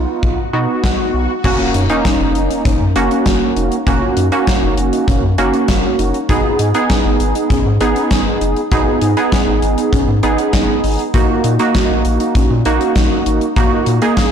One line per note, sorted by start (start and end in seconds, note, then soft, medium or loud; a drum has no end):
0.00 0.39 B3 medium
0.00 0.39 D#4 medium
0.00 0.39 F4 medium
0.00 swell medium
0.23 0.36 B1 loud
0.23 kick loud
0.53 0.67 B2 medium
0.53 1.34 B3 medium
0.53 1.34 D#4 medium
0.53 1.34 F#4 medium
0.84 0.97 B1 loud
0.84 kick loud
0.84 snare loud
1.14 1.27 B1 medium
1.44 1.58 F#1 loud
1.44 1.84 A#3 medium
1.44 1.84 C#4 medium
1.44 1.53 F#4 loud
1.44 1.84 F#4 loud
1.44 kick loud
1.44 crash loud
1.44 impact medium
1.59 1.68 F4 medium
1.74 1.88 F#2 loud
1.74 1.93 D#4 medium
1.74 closed hi-hat medium
1.90 2.83 A#3 medium
1.90 2.83 C#4 medium
1.90 2.83 D#4 medium
1.90 closed hi-hat medium
2.05 2.14 C#4 medium
2.05 kick loud
2.05 snare loud
2.05 closed hi-hat medium
2.20 2.33 F#1 loud
2.20 2.38 D#4 medium
2.35 2.49 F#1 loud
2.35 closed hi-hat medium
2.50 2.59 D#4 medium
2.50 closed hi-hat medium
2.65 2.79 F#1 loud
2.65 2.83 C#4 medium
2.65 kick loud
2.65 closed hi-hat medium
2.81 2.94 F#2 medium
2.96 3.09 F#1 loud
2.96 3.76 A#3 medium
2.96 3.76 C#4 medium
2.96 3.05 D#4 medium
2.96 3.76 F#4 loud
2.96 closed hi-hat medium
3.11 3.20 C#4 medium
3.11 closed hi-hat medium
3.26 3.40 F#1 loud
3.26 3.44 C#4 medium
3.26 kick loud
3.26 snare loud
3.26 closed hi-hat medium
3.56 3.70 F1 medium
3.56 3.74 D#4 medium
3.56 closed hi-hat medium
3.72 closed hi-hat soft
3.87 4.00 F#1 loud
3.87 4.27 A#3 medium
3.87 4.27 C#4 medium
3.87 4.27 F#4 medium
3.87 3.96 F#4 loud
3.87 kick loud
3.87 closed hi-hat medium
4.02 4.11 F4 medium
4.17 4.30 F#2 loud
4.17 4.35 D#4 medium
4.17 closed hi-hat medium
4.32 5.26 A#3 medium
4.32 5.26 C#4 medium
4.32 5.26 F#4 loud
4.32 closed hi-hat medium
4.47 4.56 C#4 medium
4.47 kick loud
4.47 snare loud
4.47 closed hi-hat medium
4.62 4.76 F#1 loud
4.62 4.80 D#4 medium
4.78 4.91 F#1 loud
4.78 closed hi-hat medium
4.93 5.02 D#4 medium
4.93 closed hi-hat medium
5.08 5.21 F#1 loud
5.08 5.26 C#4 medium
5.08 kick loud
5.08 closed hi-hat medium
5.23 5.36 F#2 loud
5.38 5.52 F#1 loud
5.38 6.18 A#3 medium
5.38 6.18 C#4 medium
5.38 5.47 D#4 medium
5.38 6.18 F#4 loud
5.38 closed hi-hat medium
5.53 5.62 C#4 medium
5.53 closed hi-hat soft
5.68 5.82 F#1 loud
5.68 5.86 C#4 medium
5.68 kick loud
5.68 snare loud
5.68 closed hi-hat medium
5.99 6.12 F#1 medium
5.99 6.17 D#4 medium
5.99 closed hi-hat medium
6.14 closed hi-hat soft
6.29 6.43 G#1 loud
6.29 6.69 B3 medium
6.29 6.69 D#4 medium
6.29 6.38 F#4 loud
6.29 6.69 G#4 loud
6.29 kick loud
6.29 closed hi-hat medium
6.44 6.53 F4 medium
6.59 6.73 G#2 loud
6.59 6.77 D#4 medium
6.59 closed hi-hat medium
6.74 7.68 B3 medium
6.74 7.68 D#4 medium
6.74 7.68 G#4 medium
6.74 closed hi-hat medium
6.90 6.99 C#4 medium
6.90 kick loud
6.90 snare loud
6.90 closed hi-hat medium
7.05 7.18 G#1 loud
7.05 7.23 D#4 medium
7.20 7.33 G#1 loud
7.20 closed hi-hat medium
7.35 7.44 D#4 medium
7.35 closed hi-hat medium
7.50 7.64 G#1 loud
7.50 7.68 C#4 medium
7.50 kick loud
7.50 closed hi-hat medium
7.66 7.79 G#2 loud
7.81 7.94 G#1 medium
7.81 8.61 B3 medium
7.81 7.90 D#4 medium
7.81 8.61 D#4 medium
7.81 8.61 G#4 loud
7.81 closed hi-hat medium
7.96 8.05 C#4 medium
7.96 closed hi-hat soft
8.11 8.24 G#1 loud
8.11 8.29 C#4 medium
8.11 kick loud
8.11 snare loud
8.11 closed hi-hat medium
8.41 8.55 F#1 medium
8.41 8.59 D#4 medium
8.41 closed hi-hat medium
8.56 closed hi-hat soft
8.72 8.85 G#1 loud
8.72 9.12 B3 medium
8.72 9.12 D#4 medium
8.72 8.81 F#4 loud
8.72 9.12 G#4 loud
8.72 kick loud
8.72 closed hi-hat medium
8.87 8.96 F4 medium
9.02 9.15 G#2 loud
9.02 9.20 D#4 medium
9.02 closed hi-hat medium
9.17 10.11 B3 medium
9.17 10.11 D#4 medium
9.17 10.11 G#4 medium
9.17 closed hi-hat medium
9.32 9.41 C#4 medium
9.32 kick loud
9.32 snare loud
9.32 closed hi-hat medium
9.47 9.61 G#1 loud
9.47 9.65 D#4 medium
9.62 9.76 G#1 loud
9.62 closed hi-hat medium
9.78 9.87 D#4 medium
9.78 closed hi-hat medium
9.93 10.06 G#1 loud
9.93 10.11 C#4 medium
9.93 kick loud
9.93 closed hi-hat medium
10.08 10.21 G#2 loud
10.23 10.37 G#1 loud
10.23 11.03 B3 medium
10.23 10.32 D#4 medium
10.23 11.03 D#4 medium
10.23 11.03 G#4 medium
10.23 closed hi-hat medium
10.38 10.47 C#4 medium
10.38 closed hi-hat medium
10.53 10.67 G#1 loud
10.53 10.71 C#4 medium
10.53 kick loud
10.53 snare loud
10.53 closed hi-hat medium
10.84 10.97 G#1 medium
10.84 11.02 D#4 medium
10.84 open hi-hat medium
10.99 closed hi-hat soft
11.14 11.27 A#1 loud
11.14 11.54 A#3 medium
11.14 11.54 D#4 medium
11.14 11.54 F#4 medium
11.14 11.23 F#4 medium
11.14 kick loud
11.14 closed hi-hat medium
11.29 11.38 F4 medium
11.44 11.58 A#2 loud
11.44 11.62 D#4 medium
11.44 closed hi-hat medium
11.59 12.53 A#3 medium
11.59 12.53 D#4 medium
11.59 12.53 F#4 medium
11.59 closed hi-hat medium
11.75 11.84 C#4 medium
11.75 kick loud
11.75 snare loud
11.75 closed hi-hat medium
11.90 12.03 A#1 loud
11.90 12.08 D#4 medium
12.05 12.18 A#1 loud
12.05 closed hi-hat medium
12.20 12.29 D#4 medium
12.20 closed hi-hat medium
12.35 12.49 A#1 loud
12.35 12.53 C#4 medium
12.35 kick loud
12.35 closed hi-hat medium
12.50 12.64 A#2 loud
12.65 12.79 A#1 loud
12.65 13.46 A#3 medium
12.65 12.74 D#4 medium
12.65 13.46 D#4 medium
12.65 13.46 F#4 medium
12.65 closed hi-hat medium
12.81 12.90 C#4 medium
12.81 closed hi-hat medium
12.96 13.09 A#1 loud
12.96 13.14 C#4 medium
12.96 kick loud
12.96 snare loud
12.96 closed hi-hat medium
13.26 13.40 G#1 medium
13.26 13.44 D#4 medium
13.26 closed hi-hat medium
13.41 closed hi-hat soft
13.56 13.70 A#1 loud
13.56 13.97 A#3 medium
13.56 13.97 D#4 medium
13.56 13.65 F#4 loud
13.56 13.97 F#4 loud
13.56 kick loud
13.56 closed hi-hat medium
13.72 13.81 F4 medium
13.86 14.00 A#2 loud
13.86 14.05 D#4 medium
13.86 closed hi-hat medium
14.02 14.32 A#3 medium
14.02 14.32 D#4 medium
14.02 14.32 G#4 loud
14.02 closed hi-hat medium
14.17 14.26 C#4 medium
14.17 kick loud
14.17 snare loud
14.17 closed hi-hat medium